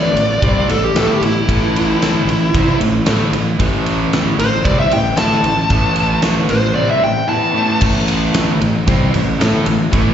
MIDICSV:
0, 0, Header, 1, 5, 480
1, 0, Start_track
1, 0, Key_signature, 0, "minor"
1, 0, Tempo, 528634
1, 1337, Time_signature, 4, 2, 24, 8
1, 9206, End_track
2, 0, Start_track
2, 0, Title_t, "Lead electric guitar"
2, 0, Program_c, 0, 29
2, 0, Note_on_c, 0, 74, 108
2, 608, Note_off_c, 0, 74, 0
2, 642, Note_on_c, 0, 69, 91
2, 767, Note_off_c, 0, 69, 0
2, 767, Note_on_c, 0, 67, 94
2, 868, Note_off_c, 0, 67, 0
2, 898, Note_on_c, 0, 69, 88
2, 994, Note_off_c, 0, 69, 0
2, 1017, Note_on_c, 0, 67, 81
2, 1114, Note_off_c, 0, 67, 0
2, 1136, Note_on_c, 0, 64, 96
2, 2523, Note_off_c, 0, 64, 0
2, 3990, Note_on_c, 0, 72, 110
2, 4216, Note_on_c, 0, 74, 95
2, 4218, Note_off_c, 0, 72, 0
2, 4335, Note_off_c, 0, 74, 0
2, 4353, Note_on_c, 0, 76, 94
2, 4463, Note_off_c, 0, 76, 0
2, 4476, Note_on_c, 0, 79, 103
2, 4698, Note_off_c, 0, 79, 0
2, 4701, Note_on_c, 0, 81, 100
2, 5632, Note_off_c, 0, 81, 0
2, 5905, Note_on_c, 0, 72, 101
2, 6126, Note_off_c, 0, 72, 0
2, 6130, Note_on_c, 0, 74, 96
2, 6251, Note_off_c, 0, 74, 0
2, 6271, Note_on_c, 0, 76, 85
2, 6381, Note_off_c, 0, 76, 0
2, 6388, Note_on_c, 0, 79, 90
2, 6616, Note_off_c, 0, 79, 0
2, 6620, Note_on_c, 0, 81, 97
2, 7083, Note_off_c, 0, 81, 0
2, 9206, End_track
3, 0, Start_track
3, 0, Title_t, "Overdriven electric guitar"
3, 0, Program_c, 1, 29
3, 0, Note_on_c, 1, 45, 98
3, 0, Note_on_c, 1, 52, 100
3, 0, Note_on_c, 1, 57, 105
3, 123, Note_off_c, 1, 45, 0
3, 128, Note_off_c, 1, 52, 0
3, 128, Note_off_c, 1, 57, 0
3, 141, Note_on_c, 1, 45, 69
3, 141, Note_on_c, 1, 52, 76
3, 330, Note_off_c, 1, 45, 0
3, 330, Note_off_c, 1, 52, 0
3, 378, Note_on_c, 1, 48, 92
3, 387, Note_on_c, 1, 55, 105
3, 394, Note_on_c, 1, 60, 103
3, 610, Note_off_c, 1, 48, 0
3, 614, Note_off_c, 1, 55, 0
3, 618, Note_off_c, 1, 60, 0
3, 632, Note_on_c, 1, 45, 64
3, 634, Note_on_c, 1, 52, 71
3, 816, Note_off_c, 1, 45, 0
3, 817, Note_off_c, 1, 52, 0
3, 868, Note_on_c, 1, 57, 80
3, 877, Note_on_c, 1, 64, 90
3, 885, Note_on_c, 1, 69, 101
3, 1095, Note_off_c, 1, 57, 0
3, 1100, Note_off_c, 1, 64, 0
3, 1103, Note_off_c, 1, 69, 0
3, 1120, Note_on_c, 1, 45, 60
3, 1123, Note_on_c, 1, 52, 73
3, 1301, Note_off_c, 1, 45, 0
3, 1302, Note_off_c, 1, 52, 0
3, 1349, Note_on_c, 1, 45, 97
3, 1359, Note_on_c, 1, 52, 98
3, 1363, Note_on_c, 1, 57, 117
3, 2057, Note_off_c, 1, 45, 0
3, 2062, Note_off_c, 1, 52, 0
3, 2064, Note_off_c, 1, 57, 0
3, 2069, Note_on_c, 1, 45, 68
3, 2079, Note_on_c, 1, 52, 75
3, 2256, Note_off_c, 1, 45, 0
3, 2261, Note_off_c, 1, 52, 0
3, 2314, Note_on_c, 1, 48, 91
3, 2322, Note_on_c, 1, 55, 92
3, 2325, Note_on_c, 1, 60, 101
3, 2540, Note_off_c, 1, 48, 0
3, 2543, Note_off_c, 1, 55, 0
3, 2545, Note_off_c, 1, 60, 0
3, 2560, Note_on_c, 1, 45, 67
3, 2565, Note_on_c, 1, 52, 78
3, 2742, Note_off_c, 1, 45, 0
3, 2744, Note_off_c, 1, 52, 0
3, 2791, Note_on_c, 1, 57, 90
3, 2797, Note_on_c, 1, 64, 90
3, 2801, Note_on_c, 1, 69, 107
3, 3018, Note_off_c, 1, 57, 0
3, 3021, Note_off_c, 1, 64, 0
3, 3024, Note_off_c, 1, 69, 0
3, 3028, Note_on_c, 1, 45, 64
3, 3036, Note_on_c, 1, 52, 72
3, 3216, Note_off_c, 1, 45, 0
3, 3220, Note_off_c, 1, 52, 0
3, 3262, Note_on_c, 1, 45, 87
3, 3270, Note_on_c, 1, 52, 93
3, 3275, Note_on_c, 1, 57, 106
3, 3975, Note_off_c, 1, 45, 0
3, 3979, Note_off_c, 1, 52, 0
3, 3981, Note_off_c, 1, 57, 0
3, 3984, Note_on_c, 1, 45, 68
3, 3989, Note_on_c, 1, 52, 75
3, 4174, Note_off_c, 1, 45, 0
3, 4177, Note_off_c, 1, 52, 0
3, 4230, Note_on_c, 1, 48, 91
3, 4237, Note_on_c, 1, 55, 103
3, 4240, Note_on_c, 1, 60, 103
3, 4458, Note_off_c, 1, 48, 0
3, 4462, Note_off_c, 1, 55, 0
3, 4463, Note_off_c, 1, 60, 0
3, 4470, Note_on_c, 1, 45, 69
3, 4470, Note_on_c, 1, 52, 77
3, 4657, Note_off_c, 1, 45, 0
3, 4657, Note_off_c, 1, 52, 0
3, 4693, Note_on_c, 1, 57, 96
3, 4700, Note_on_c, 1, 64, 100
3, 4707, Note_on_c, 1, 69, 105
3, 4930, Note_off_c, 1, 57, 0
3, 4933, Note_off_c, 1, 64, 0
3, 4936, Note_off_c, 1, 69, 0
3, 4948, Note_on_c, 1, 45, 69
3, 4951, Note_on_c, 1, 52, 74
3, 5136, Note_off_c, 1, 45, 0
3, 5138, Note_off_c, 1, 52, 0
3, 5188, Note_on_c, 1, 45, 85
3, 5196, Note_on_c, 1, 57, 103
3, 5198, Note_on_c, 1, 52, 100
3, 5889, Note_off_c, 1, 45, 0
3, 5900, Note_off_c, 1, 57, 0
3, 5900, Note_on_c, 1, 45, 72
3, 5901, Note_off_c, 1, 52, 0
3, 5911, Note_on_c, 1, 52, 71
3, 6091, Note_off_c, 1, 45, 0
3, 6097, Note_off_c, 1, 52, 0
3, 6138, Note_on_c, 1, 48, 89
3, 6144, Note_on_c, 1, 55, 105
3, 6149, Note_on_c, 1, 60, 115
3, 6369, Note_off_c, 1, 48, 0
3, 6369, Note_off_c, 1, 55, 0
3, 6372, Note_on_c, 1, 52, 77
3, 6373, Note_on_c, 1, 45, 66
3, 6376, Note_off_c, 1, 60, 0
3, 6567, Note_off_c, 1, 45, 0
3, 6567, Note_off_c, 1, 52, 0
3, 6608, Note_on_c, 1, 52, 87
3, 6616, Note_on_c, 1, 59, 95
3, 6618, Note_on_c, 1, 64, 110
3, 6845, Note_off_c, 1, 52, 0
3, 6849, Note_off_c, 1, 59, 0
3, 6849, Note_on_c, 1, 45, 86
3, 6850, Note_off_c, 1, 64, 0
3, 6857, Note_on_c, 1, 57, 106
3, 6858, Note_on_c, 1, 52, 96
3, 7085, Note_off_c, 1, 45, 0
3, 7090, Note_off_c, 1, 52, 0
3, 7090, Note_off_c, 1, 57, 0
3, 7097, Note_on_c, 1, 45, 97
3, 7100, Note_on_c, 1, 52, 99
3, 7104, Note_on_c, 1, 57, 105
3, 7805, Note_off_c, 1, 52, 0
3, 7808, Note_off_c, 1, 45, 0
3, 7811, Note_off_c, 1, 57, 0
3, 7816, Note_on_c, 1, 52, 84
3, 7820, Note_on_c, 1, 45, 69
3, 8007, Note_off_c, 1, 52, 0
3, 8009, Note_off_c, 1, 45, 0
3, 8053, Note_on_c, 1, 48, 97
3, 8058, Note_on_c, 1, 55, 98
3, 8062, Note_on_c, 1, 60, 107
3, 8286, Note_off_c, 1, 48, 0
3, 8288, Note_off_c, 1, 55, 0
3, 8290, Note_off_c, 1, 60, 0
3, 8294, Note_on_c, 1, 45, 67
3, 8295, Note_on_c, 1, 52, 83
3, 8485, Note_off_c, 1, 45, 0
3, 8485, Note_off_c, 1, 52, 0
3, 8528, Note_on_c, 1, 57, 101
3, 8528, Note_on_c, 1, 64, 95
3, 8536, Note_on_c, 1, 69, 103
3, 8762, Note_off_c, 1, 57, 0
3, 8762, Note_off_c, 1, 64, 0
3, 8765, Note_on_c, 1, 45, 60
3, 8766, Note_off_c, 1, 69, 0
3, 8768, Note_on_c, 1, 52, 78
3, 8960, Note_off_c, 1, 45, 0
3, 8961, Note_off_c, 1, 52, 0
3, 8994, Note_on_c, 1, 45, 111
3, 9002, Note_on_c, 1, 52, 120
3, 9004, Note_on_c, 1, 57, 112
3, 9206, Note_off_c, 1, 45, 0
3, 9206, Note_off_c, 1, 52, 0
3, 9206, Note_off_c, 1, 57, 0
3, 9206, End_track
4, 0, Start_track
4, 0, Title_t, "Fingered electric bass"
4, 0, Program_c, 2, 33
4, 0, Note_on_c, 2, 33, 93
4, 101, Note_off_c, 2, 33, 0
4, 134, Note_on_c, 2, 33, 76
4, 357, Note_off_c, 2, 33, 0
4, 385, Note_on_c, 2, 36, 102
4, 604, Note_off_c, 2, 36, 0
4, 634, Note_on_c, 2, 33, 74
4, 849, Note_off_c, 2, 33, 0
4, 856, Note_on_c, 2, 45, 100
4, 1079, Note_off_c, 2, 45, 0
4, 1096, Note_on_c, 2, 33, 84
4, 1320, Note_off_c, 2, 33, 0
4, 1349, Note_on_c, 2, 33, 98
4, 2028, Note_off_c, 2, 33, 0
4, 2048, Note_on_c, 2, 33, 72
4, 2276, Note_off_c, 2, 33, 0
4, 2306, Note_on_c, 2, 36, 96
4, 2526, Note_off_c, 2, 36, 0
4, 2540, Note_on_c, 2, 33, 85
4, 2763, Note_off_c, 2, 33, 0
4, 2776, Note_on_c, 2, 45, 88
4, 3001, Note_off_c, 2, 45, 0
4, 3010, Note_on_c, 2, 33, 81
4, 3238, Note_off_c, 2, 33, 0
4, 3266, Note_on_c, 2, 33, 99
4, 3947, Note_off_c, 2, 33, 0
4, 3977, Note_on_c, 2, 33, 76
4, 4202, Note_off_c, 2, 33, 0
4, 4222, Note_on_c, 2, 36, 100
4, 4445, Note_off_c, 2, 36, 0
4, 4462, Note_on_c, 2, 33, 81
4, 4684, Note_off_c, 2, 33, 0
4, 4693, Note_on_c, 2, 45, 94
4, 4920, Note_off_c, 2, 45, 0
4, 4929, Note_on_c, 2, 33, 82
4, 5158, Note_off_c, 2, 33, 0
4, 5180, Note_on_c, 2, 33, 99
4, 5863, Note_off_c, 2, 33, 0
4, 5907, Note_on_c, 2, 33, 70
4, 6126, Note_off_c, 2, 33, 0
4, 7098, Note_on_c, 2, 33, 99
4, 7779, Note_off_c, 2, 33, 0
4, 7830, Note_on_c, 2, 33, 74
4, 8045, Note_off_c, 2, 33, 0
4, 8055, Note_on_c, 2, 36, 98
4, 8277, Note_off_c, 2, 36, 0
4, 8312, Note_on_c, 2, 33, 77
4, 8526, Note_off_c, 2, 33, 0
4, 8540, Note_on_c, 2, 45, 89
4, 8759, Note_off_c, 2, 45, 0
4, 8776, Note_on_c, 2, 33, 88
4, 8996, Note_off_c, 2, 33, 0
4, 9013, Note_on_c, 2, 33, 92
4, 9206, Note_off_c, 2, 33, 0
4, 9206, End_track
5, 0, Start_track
5, 0, Title_t, "Drums"
5, 151, Note_on_c, 9, 51, 80
5, 242, Note_off_c, 9, 51, 0
5, 385, Note_on_c, 9, 36, 106
5, 385, Note_on_c, 9, 51, 94
5, 476, Note_off_c, 9, 36, 0
5, 476, Note_off_c, 9, 51, 0
5, 630, Note_on_c, 9, 51, 75
5, 721, Note_off_c, 9, 51, 0
5, 868, Note_on_c, 9, 51, 94
5, 873, Note_on_c, 9, 38, 113
5, 959, Note_off_c, 9, 51, 0
5, 964, Note_off_c, 9, 38, 0
5, 1112, Note_on_c, 9, 51, 76
5, 1203, Note_off_c, 9, 51, 0
5, 1351, Note_on_c, 9, 36, 100
5, 1353, Note_on_c, 9, 51, 98
5, 1441, Note_off_c, 9, 36, 0
5, 1444, Note_off_c, 9, 51, 0
5, 1600, Note_on_c, 9, 51, 76
5, 1691, Note_off_c, 9, 51, 0
5, 1835, Note_on_c, 9, 51, 97
5, 1839, Note_on_c, 9, 38, 114
5, 1925, Note_off_c, 9, 51, 0
5, 1930, Note_off_c, 9, 38, 0
5, 2077, Note_on_c, 9, 51, 76
5, 2167, Note_off_c, 9, 51, 0
5, 2311, Note_on_c, 9, 36, 111
5, 2315, Note_on_c, 9, 51, 100
5, 2402, Note_off_c, 9, 36, 0
5, 2406, Note_off_c, 9, 51, 0
5, 2550, Note_on_c, 9, 51, 82
5, 2641, Note_off_c, 9, 51, 0
5, 2780, Note_on_c, 9, 51, 109
5, 2784, Note_on_c, 9, 38, 116
5, 2870, Note_off_c, 9, 51, 0
5, 2875, Note_off_c, 9, 38, 0
5, 3026, Note_on_c, 9, 51, 79
5, 3117, Note_off_c, 9, 51, 0
5, 3266, Note_on_c, 9, 51, 103
5, 3267, Note_on_c, 9, 36, 100
5, 3357, Note_off_c, 9, 51, 0
5, 3358, Note_off_c, 9, 36, 0
5, 3507, Note_on_c, 9, 51, 85
5, 3598, Note_off_c, 9, 51, 0
5, 3751, Note_on_c, 9, 51, 100
5, 3755, Note_on_c, 9, 38, 109
5, 3841, Note_off_c, 9, 51, 0
5, 3846, Note_off_c, 9, 38, 0
5, 3990, Note_on_c, 9, 51, 85
5, 4081, Note_off_c, 9, 51, 0
5, 4223, Note_on_c, 9, 51, 101
5, 4225, Note_on_c, 9, 36, 103
5, 4314, Note_off_c, 9, 51, 0
5, 4316, Note_off_c, 9, 36, 0
5, 4462, Note_on_c, 9, 51, 76
5, 4553, Note_off_c, 9, 51, 0
5, 4696, Note_on_c, 9, 51, 97
5, 4700, Note_on_c, 9, 38, 118
5, 4786, Note_off_c, 9, 51, 0
5, 4791, Note_off_c, 9, 38, 0
5, 4823, Note_on_c, 9, 38, 37
5, 4914, Note_off_c, 9, 38, 0
5, 4939, Note_on_c, 9, 51, 72
5, 5030, Note_off_c, 9, 51, 0
5, 5175, Note_on_c, 9, 51, 90
5, 5179, Note_on_c, 9, 36, 100
5, 5265, Note_off_c, 9, 51, 0
5, 5270, Note_off_c, 9, 36, 0
5, 5409, Note_on_c, 9, 51, 73
5, 5500, Note_off_c, 9, 51, 0
5, 5649, Note_on_c, 9, 51, 101
5, 5653, Note_on_c, 9, 38, 106
5, 5740, Note_off_c, 9, 51, 0
5, 5744, Note_off_c, 9, 38, 0
5, 5891, Note_on_c, 9, 51, 73
5, 5981, Note_off_c, 9, 51, 0
5, 7090, Note_on_c, 9, 49, 119
5, 7099, Note_on_c, 9, 36, 106
5, 7181, Note_off_c, 9, 49, 0
5, 7190, Note_off_c, 9, 36, 0
5, 7337, Note_on_c, 9, 51, 91
5, 7428, Note_off_c, 9, 51, 0
5, 7574, Note_on_c, 9, 51, 100
5, 7579, Note_on_c, 9, 38, 119
5, 7665, Note_off_c, 9, 51, 0
5, 7670, Note_off_c, 9, 38, 0
5, 7822, Note_on_c, 9, 51, 81
5, 7913, Note_off_c, 9, 51, 0
5, 8058, Note_on_c, 9, 51, 103
5, 8061, Note_on_c, 9, 36, 109
5, 8149, Note_off_c, 9, 51, 0
5, 8152, Note_off_c, 9, 36, 0
5, 8298, Note_on_c, 9, 51, 85
5, 8389, Note_off_c, 9, 51, 0
5, 8543, Note_on_c, 9, 51, 98
5, 8547, Note_on_c, 9, 38, 117
5, 8634, Note_off_c, 9, 51, 0
5, 8638, Note_off_c, 9, 38, 0
5, 8659, Note_on_c, 9, 38, 36
5, 8750, Note_off_c, 9, 38, 0
5, 8772, Note_on_c, 9, 51, 79
5, 8863, Note_off_c, 9, 51, 0
5, 9014, Note_on_c, 9, 51, 98
5, 9017, Note_on_c, 9, 36, 102
5, 9105, Note_off_c, 9, 51, 0
5, 9108, Note_off_c, 9, 36, 0
5, 9206, End_track
0, 0, End_of_file